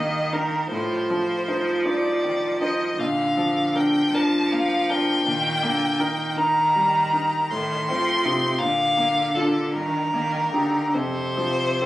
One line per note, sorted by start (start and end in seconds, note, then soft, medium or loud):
0.00 0.67 A#2 soft
0.00 0.71 D#3 soft
0.00 0.74 G3 soft
0.00 0.55 A#3 soft
0.00 0.33 D#4 soft
0.00 0.33 A#4 soft
0.00 0.35 D#5 medium
0.33 0.68 D#4 soft
0.33 0.68 A#4 soft
0.33 0.70 A#4 soft
0.71 2.95 A2 soft
0.71 2.96 F3 soft
0.71 1.83 C5 medium
1.10 1.71 F3 soft
1.48 1.82 D#4 soft
1.48 1.82 C5 soft
1.86 2.19 D#4 soft
1.86 2.19 C5 soft
1.86 2.60 D5 medium
2.24 2.84 D#3 soft
2.61 2.95 D#4 soft
2.61 2.96 C5 soft
2.61 3.01 D#5 soft
2.99 5.22 A#2 soft
2.99 4.11 D3 soft
2.99 3.77 F5 medium
3.37 3.98 F3 soft
3.75 4.09 D4 soft
3.75 4.10 A#4 soft
3.75 4.16 G5 medium
4.13 5.24 F3 soft
4.13 4.48 D4 soft
4.13 4.48 A#4 soft
4.13 4.54 A5 medium
4.52 5.12 A#3 soft
4.52 4.92 F5 medium
4.90 5.23 D4 soft
4.90 5.23 A#4 soft
4.90 6.37 G5 medium
5.26 7.47 A#2 soft
5.26 5.67 D#3 medium
5.63 6.03 D3 soft
5.63 6.22 A#3 soft
5.99 7.52 D#3 medium
5.99 6.33 D#4 soft
5.99 6.34 A#4 soft
6.37 6.71 D#4 soft
6.37 6.72 A#4 soft
6.37 7.52 A#5 medium
6.76 7.36 G3 soft
7.13 7.47 D#4 soft
7.13 7.48 A#4 soft
7.50 8.57 A2 soft
7.50 7.91 D#3 medium
7.50 8.60 C6 medium
7.88 8.26 F3 medium
7.88 8.46 C4 soft
8.25 8.63 C3 medium
8.25 8.57 D#4 soft
8.25 8.57 F4 soft
8.59 9.71 A#2 soft
8.59 9.76 D3 medium
8.59 9.36 F5 medium
8.97 9.59 A#3 soft
9.35 9.71 D4 soft
9.35 9.71 F4 soft
9.35 9.74 A4 medium
9.73 10.90 G2 soft
9.73 10.12 D#3 medium
9.73 10.95 A#4 medium
10.13 10.51 D#3 medium
10.13 10.77 A#3 soft
10.52 10.96 D3 medium
10.52 10.90 D#4 soft
10.52 10.90 G4 soft
10.93 11.86 F2 soft
10.93 11.86 C3 soft
10.93 11.86 C5 medium
11.37 11.86 F3 soft
11.81 11.86 C4 soft
11.81 11.86 A4 soft